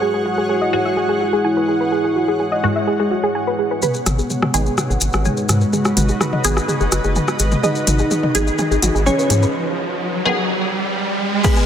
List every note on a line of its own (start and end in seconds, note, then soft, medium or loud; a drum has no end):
0.00 3.79 G#3 medium
0.00 3.79 E4 medium
0.00 1.35 F#4 loud
0.00 5.17 G#4 medium
0.00 0.05 G#4 loud
0.00 5.49 C#5 medium
0.00 3.79 F#5 medium
0.00 5.63 F#5 medium
0.14 0.22 G#4 medium
0.26 0.29 F#4 medium
0.38 0.41 G#4 medium
0.49 0.55 G#4 medium
0.62 0.67 D#5 medium
0.73 0.94 G#2 medium
0.73 0.94 E3 medium
0.73 0.94 G#3 medium
0.73 0.94 F#4 loud
0.73 0.82 G#4 medium
0.85 0.91 E5 medium
0.97 1.03 G#4 loud
1.09 1.18 G#4 medium
1.21 1.24 F#4 medium
1.33 1.36 G#4 loud
1.44 2.78 E4 loud
1.44 1.54 G#5 medium
1.57 1.62 B4 medium
1.68 1.77 G#4 medium
1.81 1.89 B4 medium
1.92 1.96 G#4 loud
2.04 2.13 G#4 medium
2.16 2.20 F#4 medium
2.28 2.32 G#4 loud
2.40 2.46 G#4 medium
2.52 2.58 D#5 loud
2.63 2.84 G#2 medium
2.63 2.84 E3 medium
2.63 2.84 G#3 medium
2.63 2.84 F#4 loud
2.63 2.73 G#4 medium
2.76 2.81 E5 medium
2.87 2.93 G#4 loud
3.00 3.08 G#4 loud
3.11 3.15 F#4 medium
3.23 3.27 G#4 loud
3.35 3.44 G#5 medium
3.47 3.53 B4 medium
3.59 3.68 G#4 medium
3.71 3.80 B4 medium
3.82 9.50 G#3 medium
3.82 5.16 B3 loud
3.82 9.50 D#4 medium
3.82 9.54 F#4 medium
3.82 3.86 G#4 loud
3.82 9.50 B4 medium
3.82 5.16 B4 medium
3.82 mid tom soft
3.82 riser medium
3.82 maracas medium
3.94 4.03 G#4 medium
3.94 maracas soft
4.01 9.54 B4 medium
4.06 4.21 G#1 loud
4.06 4.10 F#4 medium
4.06 cross-stick soft
4.06 closed hi-hat loud
4.06 mid tom medium
4.06 maracas medium
4.19 4.22 G#4 loud
4.19 maracas soft
4.30 4.36 G#4 medium
4.30 mid tom soft
4.30 maracas medium
4.42 4.48 D#5 loud
4.42 cross-stick soft
4.42 mid tom medium
4.51 4.69 G#1 medium
4.51 4.75 D#3 loud
4.51 4.75 B3 medium
4.51 4.75 G#4 loud
4.51 4.63 G#4 medium
4.51 9.54 D#5 medium
4.51 closed hi-hat loud
4.51 maracas medium
4.66 4.72 D#5 medium
4.66 maracas soft
4.78 4.84 G#4 loud
4.78 cross-stick medium
4.78 mid tom medium
4.78 maracas medium
4.90 4.97 G#1 medium
4.90 4.99 G#4 loud
4.90 maracas soft
5.01 5.09 G#1 medium
5.01 5.05 F#4 medium
5.01 closed hi-hat loud
5.01 maracas medium
5.13 5.28 G#1 medium
5.13 5.17 G#4 loud
5.13 cross-stick medium
5.13 maracas soft
5.25 6.59 G#3 loud
5.25 6.59 G#4 loud
5.25 5.35 G#5 medium
5.25 mid tom medium
5.25 maracas medium
5.37 5.43 B4 medium
5.37 maracas soft
5.49 5.64 G#2 loud
5.49 5.58 G#4 medium
5.49 cross-stick medium
5.49 closed hi-hat loud
5.49 mid tom medium
5.49 maracas medium
5.61 5.70 B4 medium
5.61 maracas soft
5.73 5.77 G#4 loud
5.73 mid tom medium
5.73 maracas medium
5.85 5.94 G#4 medium
5.85 cross-stick medium
5.85 maracas soft
5.97 6.12 G#1 medium
5.97 6.01 F#4 medium
5.97 closed hi-hat loud
5.97 mid tom medium
5.97 maracas medium
6.08 6.13 G#4 loud
6.08 maracas soft
6.21 6.27 G#4 medium
6.21 cross-stick soft
6.21 mid tom medium
6.21 maracas medium
6.33 6.39 D#5 medium
6.33 mid tom medium
6.44 6.60 G#1 medium
6.44 6.65 D#3 medium
6.44 6.65 B3 medium
6.44 6.65 G#4 loud
6.44 6.54 G#4 medium
6.44 closed hi-hat loud
6.44 maracas loud
6.57 6.62 D#5 medium
6.57 cross-stick soft
6.57 maracas soft
6.68 6.74 G#4 loud
6.68 mid tom medium
6.68 maracas medium
6.80 6.88 F#1 loud
6.80 6.89 G#4 loud
6.80 maracas soft
6.92 7.00 F#1 medium
6.92 6.96 F#4 medium
6.92 cross-stick soft
6.92 closed hi-hat loud
6.92 maracas medium
7.04 7.19 F#1 medium
7.04 7.08 G#4 loud
7.04 maracas soft
7.15 7.25 G#5 medium
7.15 mid tom medium
7.15 maracas medium
7.28 7.34 B4 medium
7.28 cross-stick soft
7.28 maracas soft
7.39 7.55 G#1 loud
7.39 7.49 G#4 medium
7.39 closed hi-hat loud
7.39 maracas medium
7.52 7.60 B4 medium
7.52 mid tom medium
7.52 maracas soft
7.63 8.97 D#4 loud
7.63 7.67 G#4 loud
7.63 8.97 D#5 loud
7.63 mid tom medium
7.63 maracas medium
7.75 7.84 G#4 medium
7.75 maracas soft
7.87 8.02 G#1 loud
7.87 7.91 F#4 medium
7.87 closed hi-hat loud
7.87 mid tom medium
7.87 maracas medium
7.99 8.03 G#4 loud
7.99 maracas soft
8.11 8.17 G#4 medium
8.11 mid tom medium
8.11 maracas medium
8.23 8.29 D#5 loud
8.23 mid tom medium
8.35 8.50 G#1 medium
8.35 8.56 D#3 medium
8.35 8.56 B3 medium
8.35 8.44 G#4 medium
8.35 8.56 G#4 loud
8.35 closed hi-hat loud
8.35 mid tom medium
8.35 maracas loud
8.47 8.53 D#5 medium
8.47 maracas soft
8.58 8.65 G#4 loud
8.58 mid tom medium
8.58 maracas medium
8.71 8.78 G#1 medium
8.71 8.80 G#4 loud
8.71 maracas soft
8.82 8.90 G#1 medium
8.82 8.86 F#4 medium
8.82 closed hi-hat loud
8.82 mid tom medium
8.82 maracas loud
8.95 9.09 G#1 medium
8.95 8.98 G#4 loud
8.95 maracas soft
9.06 9.54 C#4 loud
9.06 9.54 C#5 loud
9.06 9.15 G#5 medium
9.06 mid tom medium
9.06 maracas medium
9.19 9.24 B4 medium
9.19 maracas soft
9.30 9.45 G#2 loud
9.30 9.39 G#4 medium
9.30 closed hi-hat loud
9.30 mid tom medium
9.30 maracas loud
9.42 9.51 B4 medium
9.42 maracas soft
10.25 10.46 D#3 medium
10.25 10.46 B3 medium
10.25 10.46 G#4 loud
11.44 11.66 B3 loud
11.44 11.48 G#4 loud
11.44 11.66 B4 loud
11.44 11.48 G#5 medium
11.44 kick loud
11.44 crash loud
11.44 maracas medium
11.56 11.65 G#4 medium
11.56 11.65 G#5 medium
11.56 maracas soft